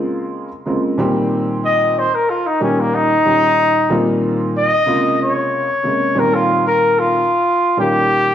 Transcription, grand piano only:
Already playing: C#3 G#3 A#3 C4 F4
0.66 C#3 G#3 A#3 C4 F4
0.98 A#2 D#3 G3 A#3 C4 G4
2.60 A#2 D#3 G3 A#3 C#4 G4
3.25 A#2 D#3 G3 A#3 C#4 G4
3.90 A#2 D#3 G3 A#3 C4 F4
4.86 C3 C#3 G#3 A#3 F4
5.83 C3 C#3 G#3 A#3 G#4
6.15 A#2 D#3 G3 A#3 C4 G4
7.77 A#2 D#3 G3 A#3 C#4 G4

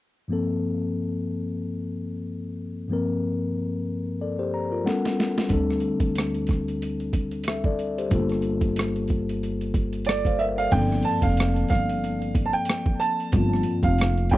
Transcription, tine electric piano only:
0.28 G2 F3 A#3 C4
0.33 A4
2.88 G2 F3 A#3
2.92 C4 A#4
4.21 A4 D5
4.39 G4 C5
4.54 A#5
4.71 F4 A#4
4.84 G3 B3 C#4 A4 F#5
5.48 G3 C4 D4
5.53 A4
7.48 A4 E5
7.65 A4 D5
7.98 G4 C5
8.10 G3 A3 F4
8.15 A#3 A4
10.09 A4 D5
10.27 C5 F5
10.41 A#4 E5
10.59 A4 D5
10.71 F3 A#3 C4
10.76 A4
13.32 F3 A#3 C4
13.37 F4

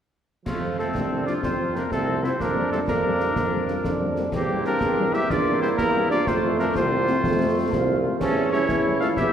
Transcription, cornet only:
0.47 F4
0.79 A4
1.26 D5
1.43 C5
1.76 A#4
1.93 A4
2.24 C5
2.42 A#4
2.72 A4
2.89 A#4
4.33 G4
4.66 A#4
5.14 E5
5.31 D5
5.62 C5
5.78 A#4
6.11 D5
6.28 C5
6.59 A#4
6.77 C5
8.20 A4
8.52 C#5
9.00 F5
9.17 E5

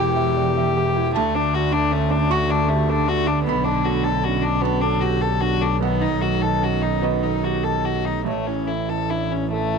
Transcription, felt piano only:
Already playing: E2 E4 F#4 G4 F#5
0.00 G5
0.16 E5
0.37 D5
0.57 E5
0.77 G4
0.96 E4
1.16 D2 A5
1.36 D4
1.53 A3
1.71 D4
1.91 C#4
2.10 D4
2.30 F#4 C#6
2.49 A4
2.68 G4
2.89 A4
3.07 D4
3.29 A3
3.47 B1 B5
3.65 D4
3.85 A3
4.06 D4
4.25 C#4
4.43 D4
4.62 F#4 A5
4.83 A4
5.04 G4
5.22 A4
5.42 D4
5.61 A3
5.81 B1 F#5
6.01 D#4
6.20 A3
6.40 D#4
6.61 C#4
6.82 D#4
7.02 F#4 D#5
7.23 A4
7.44 G4
7.63 A4
7.85 D#4
8.05 A3
8.25 A1 C#5
8.47 E4
8.67 A3
8.89 E4
9.09 D4
9.31 E4
9.53 A4
9.74 E4

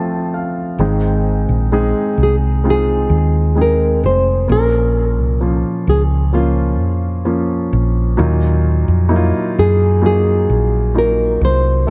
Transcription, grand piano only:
Already playing: F2 C3 F3 A3 C4 F4 A5
0.34 F5
0.80 G#2 D#3 G#3 C4 D#4 G#4
1.72 G#3 C4 D#4 G#4
2.64 G#3 C4 D#4 F4
3.55 G#3 C4 D#4 G#4
4.48 A#2 F3 A#3 C#4 F4
5.41 F3 A#3 C#4 F4
6.33 F3 A#3 C#4 F4
7.25 F3 A#3 C#4 F4
8.17 A#2 F#3 A#3 D#4 F4
9.09 F#3 A#3 D#4 E4
9.16 F4
10.02 F#3 A#3 D#4 F4
10.94 F#3 A#3 D#4 F4
11.87 A3

